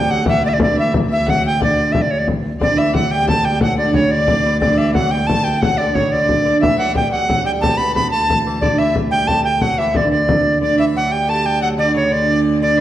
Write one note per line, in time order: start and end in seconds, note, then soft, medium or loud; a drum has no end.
0.00 2.60 D2 medium
0.00 0.12 G5 medium
0.09 0.26 F#3 medium
0.09 0.27 F#5 medium
0.09 0.45 F#5 medium
0.25 0.43 E3 medium
0.25 0.43 E5 medium
0.25 frame drum loud
0.44 0.51 D3 medium
0.44 0.51 D5 medium
0.44 0.50 D5 medium
0.49 0.58 D3 medium
0.49 0.59 D5 medium
0.49 0.55 E5 medium
0.54 0.61 D5 medium
0.59 0.76 D3 medium
0.59 0.77 D5 medium
0.59 frame drum loud
0.76 0.92 E3 medium
0.76 0.93 E5 medium
0.76 frame drum soft
0.94 frame drum medium
1.09 1.28 E3 medium
1.09 1.28 E5 medium
1.09 1.31 E5 medium
1.27 1.61 F#3 medium
1.27 1.60 F#5 medium
1.27 1.45 F#5 medium
1.27 frame drum medium
1.46 1.61 G5 medium
1.60 1.66 D3 medium
1.60 1.89 D5 medium
1.60 1.94 D5 medium
1.60 frame drum medium
1.68 1.75 D3 medium
1.76 1.91 D3 medium
1.92 2.03 E5 medium
1.92 frame drum medium
2.02 2.12 D5 medium
2.11 2.20 C#5 medium
2.11 frame drum soft
2.19 2.27 D5 medium
2.28 frame drum medium
2.60 6.62 D2 medium
2.60 2.76 D3 medium
2.60 2.78 D5 medium
2.60 2.80 D5 medium
2.60 frame drum medium
2.77 2.94 E3 medium
2.77 2.95 E5 medium
2.77 2.94 E5 medium
2.77 frame drum soft
2.94 3.10 F#3 medium
2.94 3.12 F#5 medium
2.94 3.13 F#5 medium
2.94 frame drum medium
3.10 3.27 G3 medium
3.10 3.29 G5 medium
3.10 3.28 G5 medium
3.28 3.45 A3 medium
3.28 3.45 A5 medium
3.28 3.46 A5 medium
3.28 frame drum medium
3.43 3.60 G3 medium
3.43 3.60 G5 medium
3.43 3.62 G5 medium
3.61 3.78 F#3 medium
3.61 3.77 F#5 medium
3.61 frame drum medium
3.77 3.95 D3 medium
3.77 3.96 D5 medium
3.77 3.94 D5 medium
3.77 frame drum soft
3.94 4.11 C#3 medium
3.94 4.12 C#5 medium
3.94 4.11 C#5 medium
3.94 frame drum medium
4.11 4.44 D3 medium
4.11 4.60 D5 medium
4.11 4.58 D5 medium
4.28 frame drum medium
4.45 4.60 E3 medium
4.60 4.74 D3 medium
4.60 4.79 D5 medium
4.60 4.93 D5 medium
4.60 frame drum medium
4.73 4.78 F#3 medium
4.78 4.95 E3 medium
4.78 4.94 E5 medium
4.78 frame drum soft
4.94 5.12 F#3 medium
4.94 5.12 F#5 medium
4.94 5.13 F#5 medium
4.94 frame drum medium
5.11 5.30 G3 medium
5.11 5.28 G5 medium
5.11 5.27 G5 medium
5.27 5.64 A3 medium
5.27 5.46 A5 medium
5.27 5.59 A5 loud
5.27 frame drum medium
5.44 5.63 G5 medium
5.57 5.80 F#5 medium
5.57 5.79 F#5 medium
5.57 5.63 G5 medium
5.62 5.80 F#3 medium
5.62 frame drum medium
5.78 5.94 D3 medium
5.78 5.96 D5 medium
5.78 5.94 D5 medium
5.78 frame drum soft
5.94 6.10 C#3 medium
5.94 6.11 C#5 medium
5.94 6.13 C#5 medium
5.94 frame drum medium
6.11 6.44 D3 medium
6.11 6.43 D5 medium
6.11 6.60 D5 medium
6.11 frame drum soft
6.29 frame drum medium
6.44 6.61 D3 medium
6.44 6.60 D5 medium
6.61 10.61 D2 medium
6.61 6.79 E3 medium
6.61 6.77 E5 medium
6.61 6.97 E5 medium
6.61 frame drum medium
6.77 6.93 F#3 medium
6.77 6.94 F#5 medium
6.77 frame drum soft
6.94 7.11 G3 medium
6.94 7.14 G5 medium
6.94 7.11 G5 medium
6.94 frame drum medium
7.11 7.27 F#3 medium
7.11 7.43 F#5 loud
7.11 7.28 F#5 medium
7.28 7.44 F#3 medium
7.28 7.48 F#5 medium
7.28 frame drum medium
7.44 7.62 G3 medium
7.44 7.52 G5 medium
7.44 7.64 G5 medium
7.61 7.77 A3 medium
7.61 7.79 A5 medium
7.61 7.71 A5 medium
7.61 frame drum medium
7.70 7.77 G5 medium
7.75 7.94 B3 medium
7.75 8.11 A5 medium
7.75 7.95 B5 medium
7.79 frame drum soft
7.95 8.13 B3 medium
7.95 8.10 B5 medium
7.95 frame drum medium
8.11 8.47 A3 medium
8.11 8.38 A5 loud
8.11 8.64 A5 medium
8.30 frame drum medium
8.46 8.63 E3 medium
8.61 8.78 D3 medium
8.61 8.80 D5 medium
8.61 frame drum medium
8.78 8.94 E3 medium
8.78 8.95 E5 medium
8.78 8.96 E5 medium
8.78 frame drum soft
8.96 frame drum medium
9.11 9.29 G3 medium
9.11 9.29 G5 loud
9.11 9.43 G5 medium
9.27 9.63 A3 medium
9.27 9.44 A5 loud
9.27 frame drum medium
9.44 9.63 G5 medium
9.44 9.61 G5 medium
9.61 9.80 F#3 medium
9.61 9.80 F#5 medium
9.61 9.78 F#5 medium
9.61 frame drum medium
9.78 9.95 E3 medium
9.78 9.98 E5 medium
9.78 9.94 E5 medium
9.95 10.10 D3 medium
9.95 10.11 D5 medium
9.95 frame drum medium
10.11 10.58 D3 medium
10.11 10.58 D5 medium
10.11 frame drum soft
10.29 frame drum medium
10.45 frame drum soft
10.61 12.81 D2 medium
10.61 10.79 D3 medium
10.61 10.80 D5 medium
10.61 10.78 D5 medium
10.78 10.96 E3 medium
10.78 11.11 E5 medium
10.78 10.85 E5 medium
10.95 11.12 F#3 medium
10.95 11.13 F#5 medium
11.12 11.29 G3 medium
11.12 11.31 G5 medium
11.12 11.30 G5 medium
11.29 11.44 A3 medium
11.29 11.61 A5 medium
11.29 11.47 A5 medium
11.45 11.61 G3 medium
11.45 11.62 G5 medium
11.62 11.79 F#3 medium
11.62 11.69 F#5 medium
11.62 11.68 F#5 medium
11.77 11.93 D3 medium
11.77 11.96 D5 medium
11.77 11.94 D5 medium
11.94 12.11 C#3 medium
11.94 12.13 C#5 medium
11.94 12.14 C#5 medium
12.11 12.58 D3 medium
12.11 12.61 D5 medium
12.11 12.40 D5 medium
12.61 12.77 D3 medium
12.61 12.79 D5 medium
12.61 12.81 D5 medium
12.77 12.81 E3 medium